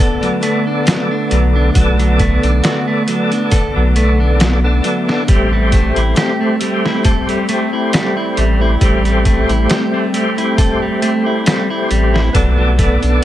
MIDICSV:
0, 0, Header, 1, 6, 480
1, 0, Start_track
1, 0, Tempo, 882353
1, 954, Time_signature, 4, 2, 24, 8
1, 7203, End_track
2, 0, Start_track
2, 0, Title_t, "Tonewheel organ"
2, 0, Program_c, 0, 16
2, 0, Note_on_c, 0, 59, 73
2, 0, Note_on_c, 0, 69, 74
2, 0, Note_on_c, 0, 74, 86
2, 923, Note_off_c, 0, 59, 0
2, 927, Note_off_c, 0, 69, 0
2, 930, Note_off_c, 0, 74, 0
2, 948, Note_on_c, 0, 59, 84
2, 954, Note_on_c, 0, 69, 81
2, 963, Note_on_c, 0, 74, 89
2, 1645, Note_off_c, 0, 59, 0
2, 1648, Note_off_c, 0, 69, 0
2, 1652, Note_off_c, 0, 74, 0
2, 1668, Note_on_c, 0, 59, 69
2, 1676, Note_on_c, 0, 69, 63
2, 1683, Note_on_c, 0, 74, 80
2, 2495, Note_off_c, 0, 59, 0
2, 2499, Note_off_c, 0, 69, 0
2, 2503, Note_off_c, 0, 74, 0
2, 2524, Note_on_c, 0, 59, 83
2, 2528, Note_on_c, 0, 69, 74
2, 2531, Note_on_c, 0, 74, 83
2, 2848, Note_off_c, 0, 59, 0
2, 2849, Note_off_c, 0, 69, 0
2, 2851, Note_off_c, 0, 74, 0
2, 2868, Note_on_c, 0, 57, 80
2, 2876, Note_on_c, 0, 67, 82
2, 2882, Note_on_c, 0, 72, 93
2, 3565, Note_off_c, 0, 57, 0
2, 3568, Note_off_c, 0, 67, 0
2, 3572, Note_off_c, 0, 72, 0
2, 3586, Note_on_c, 0, 57, 73
2, 3594, Note_on_c, 0, 67, 65
2, 3600, Note_on_c, 0, 72, 86
2, 4764, Note_off_c, 0, 57, 0
2, 4767, Note_off_c, 0, 67, 0
2, 4771, Note_off_c, 0, 72, 0
2, 4790, Note_on_c, 0, 57, 85
2, 4795, Note_on_c, 0, 67, 83
2, 4802, Note_on_c, 0, 72, 99
2, 5485, Note_off_c, 0, 57, 0
2, 5488, Note_off_c, 0, 67, 0
2, 5492, Note_off_c, 0, 72, 0
2, 5510, Note_on_c, 0, 57, 73
2, 5517, Note_on_c, 0, 67, 72
2, 5523, Note_on_c, 0, 72, 89
2, 6686, Note_off_c, 0, 57, 0
2, 6689, Note_off_c, 0, 67, 0
2, 6692, Note_off_c, 0, 72, 0
2, 6708, Note_on_c, 0, 59, 84
2, 6715, Note_on_c, 0, 69, 82
2, 6722, Note_on_c, 0, 74, 98
2, 7203, Note_off_c, 0, 59, 0
2, 7203, Note_off_c, 0, 69, 0
2, 7203, Note_off_c, 0, 74, 0
2, 7203, End_track
3, 0, Start_track
3, 0, Title_t, "Ambient pad"
3, 0, Program_c, 1, 92
3, 0, Note_on_c, 1, 50, 93
3, 0, Note_on_c, 1, 57, 92
3, 0, Note_on_c, 1, 59, 98
3, 2852, Note_off_c, 1, 57, 0
3, 2852, Note_off_c, 1, 59, 0
3, 2853, Note_off_c, 1, 50, 0
3, 2874, Note_on_c, 1, 57, 76
3, 2875, Note_on_c, 1, 55, 86
3, 2878, Note_on_c, 1, 60, 91
3, 6693, Note_off_c, 1, 55, 0
3, 6694, Note_off_c, 1, 60, 0
3, 6713, Note_on_c, 1, 59, 95
3, 6716, Note_on_c, 1, 50, 89
3, 7203, Note_off_c, 1, 50, 0
3, 7203, Note_off_c, 1, 57, 0
3, 7203, Note_off_c, 1, 59, 0
3, 7203, End_track
4, 0, Start_track
4, 0, Title_t, "Clean electric guitar"
4, 0, Program_c, 2, 27
4, 0, Note_on_c, 2, 69, 90
4, 111, Note_off_c, 2, 69, 0
4, 125, Note_on_c, 2, 54, 79
4, 223, Note_off_c, 2, 54, 0
4, 233, Note_on_c, 2, 57, 105
4, 351, Note_off_c, 2, 57, 0
4, 365, Note_on_c, 2, 62, 73
4, 463, Note_off_c, 2, 62, 0
4, 473, Note_on_c, 2, 54, 97
4, 591, Note_off_c, 2, 54, 0
4, 605, Note_on_c, 2, 62, 79
4, 709, Note_off_c, 2, 62, 0
4, 713, Note_on_c, 2, 54, 76
4, 837, Note_off_c, 2, 54, 0
4, 847, Note_on_c, 2, 62, 75
4, 950, Note_off_c, 2, 62, 0
4, 956, Note_on_c, 2, 54, 81
4, 1079, Note_off_c, 2, 54, 0
4, 1085, Note_on_c, 2, 54, 77
4, 1183, Note_off_c, 2, 54, 0
4, 1197, Note_on_c, 2, 57, 104
4, 1312, Note_off_c, 2, 57, 0
4, 1326, Note_on_c, 2, 62, 75
4, 1424, Note_off_c, 2, 62, 0
4, 1433, Note_on_c, 2, 66, 84
4, 1551, Note_off_c, 2, 66, 0
4, 1565, Note_on_c, 2, 57, 76
4, 1663, Note_off_c, 2, 57, 0
4, 1676, Note_on_c, 2, 54, 73
4, 1799, Note_off_c, 2, 54, 0
4, 1807, Note_on_c, 2, 62, 69
4, 1910, Note_off_c, 2, 62, 0
4, 1914, Note_on_c, 2, 69, 86
4, 2031, Note_off_c, 2, 69, 0
4, 2046, Note_on_c, 2, 54, 80
4, 2144, Note_off_c, 2, 54, 0
4, 2155, Note_on_c, 2, 57, 98
4, 2272, Note_off_c, 2, 57, 0
4, 2285, Note_on_c, 2, 62, 78
4, 2383, Note_off_c, 2, 62, 0
4, 2394, Note_on_c, 2, 54, 95
4, 2511, Note_off_c, 2, 54, 0
4, 2526, Note_on_c, 2, 62, 74
4, 2630, Note_off_c, 2, 62, 0
4, 2634, Note_on_c, 2, 54, 74
4, 2758, Note_off_c, 2, 54, 0
4, 2766, Note_on_c, 2, 62, 79
4, 2869, Note_off_c, 2, 62, 0
4, 2875, Note_on_c, 2, 55, 81
4, 2998, Note_off_c, 2, 55, 0
4, 3006, Note_on_c, 2, 55, 75
4, 3104, Note_off_c, 2, 55, 0
4, 3117, Note_on_c, 2, 57, 100
4, 3233, Note_off_c, 2, 57, 0
4, 3246, Note_on_c, 2, 64, 76
4, 3344, Note_off_c, 2, 64, 0
4, 3358, Note_on_c, 2, 67, 80
4, 3473, Note_off_c, 2, 67, 0
4, 3486, Note_on_c, 2, 57, 77
4, 3584, Note_off_c, 2, 57, 0
4, 3598, Note_on_c, 2, 55, 74
4, 3720, Note_off_c, 2, 55, 0
4, 3727, Note_on_c, 2, 64, 70
4, 3830, Note_off_c, 2, 64, 0
4, 3836, Note_on_c, 2, 69, 85
4, 3952, Note_off_c, 2, 69, 0
4, 3965, Note_on_c, 2, 55, 80
4, 4064, Note_off_c, 2, 55, 0
4, 4075, Note_on_c, 2, 57, 106
4, 4192, Note_off_c, 2, 57, 0
4, 4206, Note_on_c, 2, 64, 71
4, 4304, Note_off_c, 2, 64, 0
4, 4315, Note_on_c, 2, 55, 95
4, 4432, Note_off_c, 2, 55, 0
4, 4444, Note_on_c, 2, 64, 76
4, 4548, Note_off_c, 2, 64, 0
4, 4554, Note_on_c, 2, 55, 76
4, 4678, Note_off_c, 2, 55, 0
4, 4686, Note_on_c, 2, 64, 77
4, 4789, Note_off_c, 2, 64, 0
4, 4794, Note_on_c, 2, 55, 79
4, 4918, Note_off_c, 2, 55, 0
4, 4926, Note_on_c, 2, 55, 82
4, 5024, Note_off_c, 2, 55, 0
4, 5036, Note_on_c, 2, 57, 100
4, 5152, Note_off_c, 2, 57, 0
4, 5166, Note_on_c, 2, 64, 74
4, 5264, Note_off_c, 2, 64, 0
4, 5277, Note_on_c, 2, 67, 84
4, 5393, Note_off_c, 2, 67, 0
4, 5406, Note_on_c, 2, 57, 78
4, 5504, Note_off_c, 2, 57, 0
4, 5517, Note_on_c, 2, 55, 75
4, 5639, Note_off_c, 2, 55, 0
4, 5646, Note_on_c, 2, 64, 71
4, 5750, Note_off_c, 2, 64, 0
4, 5756, Note_on_c, 2, 69, 89
4, 5872, Note_off_c, 2, 69, 0
4, 5887, Note_on_c, 2, 55, 77
4, 5984, Note_off_c, 2, 55, 0
4, 5996, Note_on_c, 2, 57, 103
4, 6112, Note_off_c, 2, 57, 0
4, 6127, Note_on_c, 2, 64, 75
4, 6224, Note_off_c, 2, 64, 0
4, 6237, Note_on_c, 2, 55, 96
4, 6353, Note_off_c, 2, 55, 0
4, 6367, Note_on_c, 2, 64, 79
4, 6470, Note_off_c, 2, 64, 0
4, 6477, Note_on_c, 2, 55, 80
4, 6599, Note_off_c, 2, 55, 0
4, 6605, Note_on_c, 2, 64, 78
4, 6709, Note_off_c, 2, 64, 0
4, 6715, Note_on_c, 2, 54, 81
4, 6838, Note_off_c, 2, 54, 0
4, 6844, Note_on_c, 2, 54, 81
4, 6943, Note_off_c, 2, 54, 0
4, 6955, Note_on_c, 2, 57, 108
4, 7072, Note_off_c, 2, 57, 0
4, 7086, Note_on_c, 2, 62, 74
4, 7184, Note_off_c, 2, 62, 0
4, 7203, End_track
5, 0, Start_track
5, 0, Title_t, "Sub bass"
5, 0, Program_c, 3, 38
5, 714, Note_on_c, 3, 35, 90
5, 927, Note_off_c, 3, 35, 0
5, 954, Note_on_c, 3, 35, 100
5, 1299, Note_off_c, 3, 35, 0
5, 1323, Note_on_c, 3, 35, 80
5, 1420, Note_off_c, 3, 35, 0
5, 2045, Note_on_c, 3, 35, 89
5, 2613, Note_off_c, 3, 35, 0
5, 2876, Note_on_c, 3, 33, 101
5, 3220, Note_off_c, 3, 33, 0
5, 3244, Note_on_c, 3, 33, 84
5, 3341, Note_off_c, 3, 33, 0
5, 4555, Note_on_c, 3, 33, 100
5, 4768, Note_off_c, 3, 33, 0
5, 4795, Note_on_c, 3, 33, 92
5, 5140, Note_off_c, 3, 33, 0
5, 5163, Note_on_c, 3, 33, 84
5, 5260, Note_off_c, 3, 33, 0
5, 6477, Note_on_c, 3, 33, 94
5, 6689, Note_off_c, 3, 33, 0
5, 6715, Note_on_c, 3, 35, 97
5, 7060, Note_off_c, 3, 35, 0
5, 7087, Note_on_c, 3, 35, 88
5, 7182, Note_off_c, 3, 35, 0
5, 7203, End_track
6, 0, Start_track
6, 0, Title_t, "Drums"
6, 124, Note_on_c, 9, 42, 41
6, 178, Note_off_c, 9, 42, 0
6, 232, Note_on_c, 9, 42, 73
6, 287, Note_off_c, 9, 42, 0
6, 472, Note_on_c, 9, 42, 88
6, 478, Note_on_c, 9, 38, 118
6, 527, Note_off_c, 9, 42, 0
6, 533, Note_off_c, 9, 38, 0
6, 713, Note_on_c, 9, 42, 69
6, 767, Note_off_c, 9, 42, 0
6, 953, Note_on_c, 9, 36, 106
6, 953, Note_on_c, 9, 42, 90
6, 1007, Note_off_c, 9, 42, 0
6, 1008, Note_off_c, 9, 36, 0
6, 1085, Note_on_c, 9, 42, 44
6, 1140, Note_off_c, 9, 42, 0
6, 1194, Note_on_c, 9, 36, 94
6, 1194, Note_on_c, 9, 42, 62
6, 1248, Note_off_c, 9, 42, 0
6, 1249, Note_off_c, 9, 36, 0
6, 1324, Note_on_c, 9, 42, 46
6, 1378, Note_off_c, 9, 42, 0
6, 1434, Note_on_c, 9, 42, 79
6, 1440, Note_on_c, 9, 38, 109
6, 1488, Note_off_c, 9, 42, 0
6, 1494, Note_off_c, 9, 38, 0
6, 1674, Note_on_c, 9, 42, 74
6, 1728, Note_off_c, 9, 42, 0
6, 1804, Note_on_c, 9, 42, 41
6, 1858, Note_off_c, 9, 42, 0
6, 1912, Note_on_c, 9, 42, 92
6, 1914, Note_on_c, 9, 36, 109
6, 1966, Note_off_c, 9, 42, 0
6, 1969, Note_off_c, 9, 36, 0
6, 2153, Note_on_c, 9, 42, 69
6, 2208, Note_off_c, 9, 42, 0
6, 2394, Note_on_c, 9, 42, 83
6, 2400, Note_on_c, 9, 38, 116
6, 2448, Note_off_c, 9, 42, 0
6, 2454, Note_off_c, 9, 38, 0
6, 2633, Note_on_c, 9, 42, 65
6, 2688, Note_off_c, 9, 42, 0
6, 2770, Note_on_c, 9, 38, 47
6, 2824, Note_off_c, 9, 38, 0
6, 2874, Note_on_c, 9, 42, 82
6, 2875, Note_on_c, 9, 36, 115
6, 2928, Note_off_c, 9, 42, 0
6, 2929, Note_off_c, 9, 36, 0
6, 3113, Note_on_c, 9, 42, 72
6, 3115, Note_on_c, 9, 36, 91
6, 3167, Note_off_c, 9, 42, 0
6, 3169, Note_off_c, 9, 36, 0
6, 3244, Note_on_c, 9, 42, 45
6, 3298, Note_off_c, 9, 42, 0
6, 3352, Note_on_c, 9, 42, 81
6, 3358, Note_on_c, 9, 38, 107
6, 3407, Note_off_c, 9, 42, 0
6, 3413, Note_off_c, 9, 38, 0
6, 3594, Note_on_c, 9, 42, 74
6, 3648, Note_off_c, 9, 42, 0
6, 3730, Note_on_c, 9, 38, 48
6, 3784, Note_off_c, 9, 38, 0
6, 3833, Note_on_c, 9, 42, 94
6, 3834, Note_on_c, 9, 36, 112
6, 3887, Note_off_c, 9, 42, 0
6, 3889, Note_off_c, 9, 36, 0
6, 3964, Note_on_c, 9, 42, 45
6, 4019, Note_off_c, 9, 42, 0
6, 4073, Note_on_c, 9, 42, 69
6, 4127, Note_off_c, 9, 42, 0
6, 4315, Note_on_c, 9, 42, 87
6, 4321, Note_on_c, 9, 38, 120
6, 4369, Note_off_c, 9, 42, 0
6, 4375, Note_off_c, 9, 38, 0
6, 4555, Note_on_c, 9, 42, 68
6, 4609, Note_off_c, 9, 42, 0
6, 4794, Note_on_c, 9, 36, 106
6, 4794, Note_on_c, 9, 42, 86
6, 4848, Note_off_c, 9, 36, 0
6, 4848, Note_off_c, 9, 42, 0
6, 4925, Note_on_c, 9, 42, 44
6, 4979, Note_off_c, 9, 42, 0
6, 5034, Note_on_c, 9, 36, 99
6, 5034, Note_on_c, 9, 42, 68
6, 5088, Note_off_c, 9, 42, 0
6, 5089, Note_off_c, 9, 36, 0
6, 5165, Note_on_c, 9, 42, 45
6, 5219, Note_off_c, 9, 42, 0
6, 5274, Note_on_c, 9, 42, 77
6, 5280, Note_on_c, 9, 38, 107
6, 5329, Note_off_c, 9, 42, 0
6, 5335, Note_off_c, 9, 38, 0
6, 5516, Note_on_c, 9, 42, 70
6, 5570, Note_off_c, 9, 42, 0
6, 5647, Note_on_c, 9, 42, 44
6, 5702, Note_off_c, 9, 42, 0
6, 5755, Note_on_c, 9, 36, 115
6, 5757, Note_on_c, 9, 42, 88
6, 5810, Note_off_c, 9, 36, 0
6, 5811, Note_off_c, 9, 42, 0
6, 5997, Note_on_c, 9, 42, 69
6, 6051, Note_off_c, 9, 42, 0
6, 6236, Note_on_c, 9, 42, 92
6, 6242, Note_on_c, 9, 38, 118
6, 6290, Note_off_c, 9, 42, 0
6, 6296, Note_off_c, 9, 38, 0
6, 6477, Note_on_c, 9, 42, 70
6, 6531, Note_off_c, 9, 42, 0
6, 6613, Note_on_c, 9, 38, 50
6, 6668, Note_off_c, 9, 38, 0
6, 6716, Note_on_c, 9, 36, 111
6, 6717, Note_on_c, 9, 42, 84
6, 6770, Note_off_c, 9, 36, 0
6, 6771, Note_off_c, 9, 42, 0
6, 6956, Note_on_c, 9, 36, 98
6, 6956, Note_on_c, 9, 42, 69
6, 7010, Note_off_c, 9, 36, 0
6, 7011, Note_off_c, 9, 42, 0
6, 7086, Note_on_c, 9, 42, 45
6, 7141, Note_off_c, 9, 42, 0
6, 7203, End_track
0, 0, End_of_file